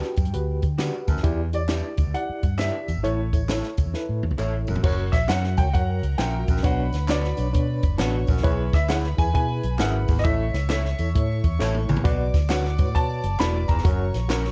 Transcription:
Already playing: F#4 G4 B4 G5
0.02 snare, closed hi-hat
0.16 F#2, kick, closed hi-hat, tambourine
0.25 G2, closed hi-hat
0.33 D2 F#4 G4 B4, closed hi-hat, tambourine
0.62 D3, kick, closed hi-hat, tambourine
0.78 D4 F#4 G4 B4 D5 F#5, snare, clap, closed hi-hat, tambourine
1.07 D2 F#2 A5, kick, closed hi-hat, tambourine
1.17 D#2, snare
1.23 E2 E4 G4 D5, kick, closed hi-hat, tambourine
1.53 E4 G4 C#5 D5, closed hi-hat, tambourine
1.68 D4 E4 G4 B4 D5 E5, snare, clap, closed hi-hat, tambourine
1.97 D2, kick, closed hi-hat, tambourine
2.07 D2
2.14 E4 G4 D5 F#5, closed hi-hat
2.29 muted fingered electric bass stroke
2.43 G2, kick, closed hi-hat, tambourine
2.58 D4 E4 G4 B4 D5 E5, snare, clap, closed hi-hat, tambourine
2.88 E2, closed hi-hat, tambourine
2.96 G#1
3.03 A1 A2 E4 A4 C#5, closed hi-hat, tambourine
3.33 E4 A4 C#5, kick, closed hi-hat, tambourine
3.48 E4 A4 C#5 E5, snare, clap, closed hi-hat, tambourine
3.63 snare, closed hi-hat
3.77 C#2, kick, closed hi-hat, tambourine
3.86 E2
3.94 E4 A4 B4, snare
4.09 A2
4.23 E2, high tom
4.31 C#2, high tom
4.38 A1 E4 A4 C#5 E5, clap, tambourine
4.67 F1 F#2, floor tom, tambourine
4.76 floor tom
4.83 F#1 F#2 F#4 A#4 C#5 F#5, kick, crash, tambourine
5.12 A#1 E5, kick, snare, closed hi-hat, tambourine
5.28 F#2 C#4 F#4 A#4 C#5 F#5, snare, clap, closed hi-hat, tambourine
5.44 snare
5.57 C#2 F#4 A#4 C#5 G5, kick, closed hi-hat, tambourine
5.73 F#2 F#4 A#4 C#5 F#5 A#5, kick, closed hi-hat, tambourine
6.03 C#2, closed hi-hat
6.18 A#1 A#2 C#4 F#4 A#4 E5 F#5 G5, snare, clap, closed hi-hat, tambourine
6.48 A#1 F#2, kick, closed hi-hat, tambourine
6.56 snare
6.63 B1 B2 D4 B4 C#5 F#5 B5, kick, closed hi-hat, tambourine
6.93 D2, snare, closed hi-hat, tambourine
7.08 D4 F#4 B4 C#5 D5 F#5, snare, clap, closed hi-hat, tambourine
7.24 snare
7.37 B1 D4 B4 C#5, closed hi-hat, tambourine
7.53 B2 D4 B4 C#5, kick, closed hi-hat, tambourine
7.83 F#1, kick, closed hi-hat, tambourine
7.98 A1 B2 D4 F#4 B4 C#5 F#5 C#6, snare, clap, closed hi-hat, tambourine
8.27 A#1 F#2, kick, open hi-hat, tambourine
8.37 snare
8.43 B1 E2 E4 G#4 B4 C#5 B5, kick, closed hi-hat, tambourine
8.73 D2 E5, kick, snare, closed hi-hat, tambourine
8.89 E4 G#4 B4 C#5 E5 F#5, snare, clap, closed hi-hat, tambourine
9.04 snare
9.17 E2 E4 G#4 B4 G#5, kick, closed hi-hat, tambourine
9.34 B2 E4 G#4 B4 G#5, kick, closed hi-hat, tambourine
9.63 B1, closed hi-hat, tambourine
9.78 G#1 F#2 E4 G#4 B4 E5 F#5, snare, clap, closed hi-hat, tambourine
10.08 G#1 E2, kick, open hi-hat, tambourine
10.18 D#5, snare
10.24 A1 A2 E4 A4 C#5 E5 C#6, kick, closed hi-hat, tambourine
10.54 C#2, snare, closed hi-hat, tambourine
10.69 E4 A4 C#5 E5, snare, clap, closed hi-hat, tambourine
10.85 snare
10.98 E2 E4 A4 C#5, closed hi-hat, tambourine
11.15 A2 E4 A4 C#5, kick, closed hi-hat
11.44 E2, kick, closed hi-hat, tambourine
11.59 A1 A2 E4 A4 C#5 E5, snare, clap, tambourine
11.74 high tom
11.89 A#1 E2, mid tom, tambourine
11.97 floor tom
12.04 B1 B2 F#4 B4 D5 D6, kick, closed hi-hat, tambourine
12.34 D2, kick, snare, closed hi-hat, tambourine
12.49 D4 F#4 B4 C#5 D5 F#5, snare, clap, closed hi-hat, tambourine
12.65 snare
12.78 A2 F#4 B4 C#5, kick, closed hi-hat, tambourine
12.94 B2 F#4 B4 C#5 A5, kick, closed hi-hat
13.23 F#1, closed hi-hat, tambourine
13.39 E1 A2 D4 F#4 B4 D5 B5, snare, clap, closed hi-hat, tambourine
13.68 F1 E2 A#5, kick, closed hi-hat, tambourine
13.78 snare
13.84 F#1 F#2 F#4 A#4 C#5 C#6, kick, closed hi-hat, tambourine
14.14 A#1, snare, closed hi-hat, tambourine
14.28 C#4 F#4 A#4 C#5, snare, clap, closed hi-hat, tambourine
14.44 snare

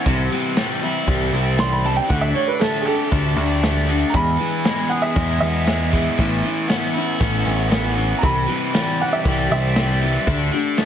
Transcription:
0.05 C2 C3 E3 G3 C4 G4, kick, closed hi-hat
0.31 E3 G3 C4 G4
0.57 E3 G3 C4 G4, snare, closed hi-hat
0.82 G3 C4 E4 G4
1.06 C2 C3 E3 G3 C4 G4, kick, closed hi-hat
1.33 C2 G3 C4 G4
1.58 E3 G3 C4 G4 C6, snare, closed hi-hat
1.71 B5
1.85 E3 G3 C4 G4 A5
1.96 G5
2.10 D2 D3 A3 D4 G4 F#5, kick, closed hi-hat
2.21 E5
2.34 D3 A3 D4 G4 C#5
2.47 B4
2.59 D3 A3 D4 A4, snare, closed hi-hat
2.64 G4
2.81 G#4
2.86 A3 D4 G4 A4
3.12 D2 D3 A3 D4 G4, kick, closed hi-hat
3.36 D2 A3 D4 G4
3.62 D3 A3 D4 G4, snare, closed hi-hat
3.76 snare
3.88 D3 A3 D4 G4
4.10 E2 A#5
4.14 E2 B2 E3 G#3 B3 G#4 B5, kick, closed hi-hat
4.39 E3 G#3 B3 G#4
4.65 E3 G#3 B3 G#4, snare, closed hi-hat
4.89 E3 G#3 B3 G#4 F#5
5.02 E5
5.15 E2 B2 E3 G#3 B3 G#4, kick, closed hi-hat
5.40 E2 E3 G#3 B3 G#4 E5
5.67 E3 G#3 B3 G#4, snare, closed hi-hat
5.93 E3 G#3 B3 G#4, kick
6.18 A1 A2 E3 B3 C#4 E4, kick, closed hi-hat, tambourine
6.43 E3 B3 C#4 E4, tambourine
6.70 E3 B3 C#4 E4, snare, closed hi-hat, tambourine
6.96 B3 C#4 E4
7.20 A1 A2 E3 B3 C#4 E4, kick, closed hi-hat, tambourine
7.46 A1 B3 C#4 E4, tambourine
7.72 E3 B3 C#4 E4, snare, closed hi-hat, tambourine
7.96 E3 B3 C#4 E4, tambourine
8.18 A#5
8.23 C2 C3 E3 G3 C4 G4 B5, kick, closed hi-hat, tambourine
8.48 E3 G3 C4 G4, tambourine
8.74 E3 G3 C4 G4, snare, closed hi-hat, tambourine
9.00 G3 C4 G4 F#5, tambourine
9.13 E5
9.25 C2 C3 E3 G3 C4 G4, kick, closed hi-hat, tambourine
9.50 C2 C4 G4 E5, tambourine
9.76 E3 G3 C4 G4, snare, closed hi-hat, tambourine
10.01 E3 G3 C4 G4, tambourine
10.27 D2 D3 A3 D4 G4, kick, closed hi-hat, tambourine
10.52 D3 A3 D4 G4, tambourine
10.78 D3 A3 D4 G4, snare, closed hi-hat, tambourine

